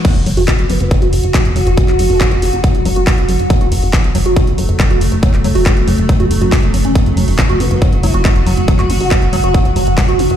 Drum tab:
CC |x---------------|----------------|----------------|----------------|
HH |xxooxxoxxxoxxxox|xxooxxoxxxoxoxox|xxooxxoxxxoxxxox|xxooxxoxxxoxoxox|
CP |----x-------x---|-x--x-------x---|----x-------x---|-x--x-------x---|
BD |o---o---o---o---|o---o---o---o---|o---o---o---o---|o---o---o---o---|

CC |----------------|----------------|
HH |xxooxxoxxxoxxxox|xxooxxoxxxoxoxox|
CP |----x-------x---|-x--x-------x---|
BD |o---o---o---o---|o---o---o---o---|